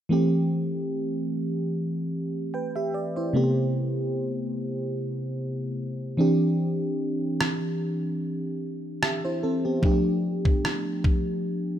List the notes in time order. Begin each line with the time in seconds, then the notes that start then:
0.09 E3 A3 C4 G4
2.54 B4 G5
2.76 G4 E5
2.94 D5
3.16 E4 C5
3.33 C3 A3 B3 G4
6.17 E3 C4 D4 G4
7.41 cross-stick
9.03 G4 E5, cross-stick
9.25 E4 C5
9.43 C4 A4
9.65 B3 G4
9.82 F3 A3 D4 G4, kick
10.45 kick
10.65 cross-stick
11.04 kick